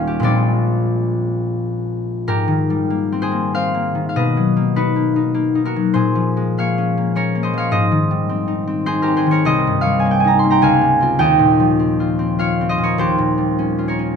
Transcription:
Already playing: D#1 D#2 G3 C#4 D#4 F4 F5 G5 A#5
0.07 G4
0.20 A#1 A#2 G#3 C4 F4
0.24 D5
2.28 G#2 G4 A#4
2.48 D#3
2.70 G3
2.90 A#3
3.12 C4
3.22 G#4 C5
3.31 A#3
3.55 C4 C5 F5
3.74 A#3
3.95 D#3
4.09 F5
4.16 B2 B4 D#5
4.37 F#3
4.57 A#3
4.76 D#4 F#4 B4
4.96 A#3
5.16 D#4
5.35 A#3
5.55 D#4
5.65 F#4 A#4
5.76 F#3
5.94 A#2 G#4 C5
6.15 F3
6.37 G#3
6.58 A#3 C#5 F5
6.78 C#4
6.97 A#3
7.15 C#4 A#4 C#5
7.35 A#3
7.43 C5 D#5
7.54 F3
7.58 C#5 F5
7.71 G#2 C5 D#5
7.91 D#3
8.11 G3
8.29 C4
8.48 D#4
8.67 C4
8.86 D#4 G#4 C5
9.02 G4 A#4
9.08 C4
9.17 G#4 C5
9.26 D#3
9.31 A#4 C#5
9.45 C2 C5 D#5
9.67 G2
9.81 C#5 F5
9.86 G3
10.00 G#5
10.06 A#3
10.11 G5
10.20 G#5
10.25 D#4 A#5
10.39 C6
10.44 A#3
10.50 G5 A#5
10.62 C#2 F5 G#5
10.81 G3
11.01 C4 F4
11.19 D#2 D#5 G5
11.39 A#2
11.60 F3
11.79 C4
12.00 F4
12.19 C4
12.39 F4 C#5 F5
12.61 C4
12.69 C5 D#5
12.78 A#2
12.84 A#4 C#5
12.98 D#2 G4 C5
13.18 A#2
13.38 G3
13.59 C#4
13.79 F4
13.88 A#4 C#5
13.99 C#4

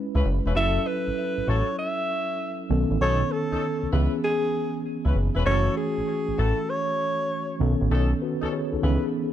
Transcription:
Already playing: G#3 C#4 E4 B4
0.14 C#2 C#4 E4 B4
0.26 F#1
0.45 E1 C#4 E4 B4
0.55 F#1 F#3 C#4 E4 F#4 A4 E5
0.87 B4
1.07 A1
1.38 A1
1.47 A1 E4 F#4 A4 C#5
1.79 E5
2.69 B1 D#3 B3 C#4 A4
2.91 A1
3.00 B1 C#4 D#4 A4 C#5
3.32 A4
3.51 C#2 C#4 D#4 A4
3.83 C#2
3.92 C#2 E3 B3 C#4 E4 G#4 B4
4.24 G#4
5.04 C#2 C#4 E4 B4
5.15 F#1
5.35 E1 C#4 E4 B4
5.45 F#1 E3 A3 C#4 E4 F#4 A4 C#5
5.77 G#4
5.98 A1
6.28 A1
6.37 A1 E4 F#4 A4
6.70 C#5
7.59 B1 D#3 B3 C#4 A4
7.81 A1
7.90 B1 C#4 D#4 A4
8.22 F#4 B4
8.41 C#2 C#4 D#4 A4
8.53 G#4 C#5
8.73 C#2 D#4 A4
8.82 C#2 D#3 B3 C#4 E4 G#4 B4
8.89 E3

